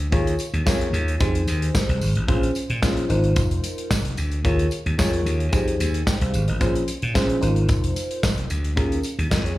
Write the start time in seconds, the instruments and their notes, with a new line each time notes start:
0.00 closed hi-hat
0.12 slap bass D#2, fm electric piano F4 G#4 A#4 C#5, kick, closed hi-hat
0.27 closed hi-hat
0.39 closed hi-hat, tambourine
0.53 slap bass D#2, closed hi-hat
0.66 slap bass F2, fm electric piano F4 G#4 A#4 C#5, kick, snare, tambourine
0.81 closed hi-hat
0.93 slap bass D#2, closed hi-hat, tambourine
1.08 closed hi-hat
1.20 slap bass F2, fm electric piano D#4 G4 G#4 C5, kick, closed hi-hat, tambourine
1.35 closed hi-hat
1.48 slap bass D#2, closed hi-hat, tambourine
1.62 closed hi-hat
1.75 kick, snare, tambourine
1.89 slap bass C2, closed hi-hat
2.01 slap bass G#1, open hi-hat, tambourine
2.15 slap bass A1, closed hi-hat
2.28 slap bass A#1, fm electric piano C#4 F4 G#4 C5, kick, closed hi-hat
2.43 closed hi-hat
2.55 closed hi-hat, tambourine
2.70 slap bass A#2, closed hi-hat
2.82 slap bass A#1, fm electric piano C#4 F4 G#4 C5, kick, snare, tambourine
2.97 closed hi-hat
3.09 slap bass G#1, fm electric piano D#4 F4 A#4 C5, closed hi-hat
3.24 closed hi-hat
3.36 slap bass F1, kick, closed hi-hat, tambourine
3.51 closed hi-hat
3.64 closed hi-hat, tambourine
3.78 closed hi-hat
3.91 slap bass F1, kick, snare, tambourine
4.05 closed hi-hat
4.17 slap bass D2, closed hi-hat, tambourine
4.32 closed hi-hat
4.45 slap bass D#2, fm electric piano F4 G#4 A#4 C#5, kick, closed hi-hat, tambourine
4.59 closed hi-hat
4.71 closed hi-hat, tambourine
4.86 slap bass D#2, closed hi-hat
4.98 slap bass F2, fm electric piano F4 G#4 A#4 C#5, kick, snare, tambourine
5.13 closed hi-hat
5.26 slap bass D#2, closed hi-hat, tambourine
5.40 closed hi-hat
5.52 slap bass F2, fm electric piano D#4 G4 G#4 C5, kick, closed hi-hat, tambourine
5.68 closed hi-hat
5.80 slap bass D#2, closed hi-hat, tambourine
5.94 closed hi-hat
6.07 fm electric piano C5 G5, kick, snare, tambourine
6.21 slap bass C2, fm electric piano C5 F5, closed hi-hat
6.34 slap bass G#1, closed hi-hat, tambourine
6.48 slap bass A1, fm electric piano A#4 D#5, closed hi-hat
6.60 slap bass A#1, fm electric piano C#4 F4 G#4 C5, kick, closed hi-hat, tambourine
6.75 closed hi-hat
6.88 closed hi-hat, tambourine
7.02 slap bass A#2, closed hi-hat
7.14 slap bass A#1, fm electric piano C#4 F4 G#4 C5, kick, snare, tambourine
7.29 closed hi-hat
7.41 slap bass G#1, fm electric piano D#4 F4 A#4 C5, closed hi-hat, tambourine
7.56 closed hi-hat
7.69 slap bass F1, kick, closed hi-hat, tambourine
7.84 closed hi-hat
7.96 closed hi-hat, tambourine
8.11 closed hi-hat
8.23 slap bass F1, kick, snare, tambourine
8.38 closed hi-hat
8.50 slap bass D2, closed hi-hat, tambourine
8.64 closed hi-hat
8.76 slap bass D#2, fm electric piano C#4 F4 G#4 A#4, kick, closed hi-hat
8.92 closed hi-hat
9.03 closed hi-hat, tambourine
9.19 slap bass D#2, closed hi-hat
9.30 slap bass F2, fm electric piano A#4 D#5, kick, snare, tambourine
9.45 fm electric piano G#4 C#5, closed hi-hat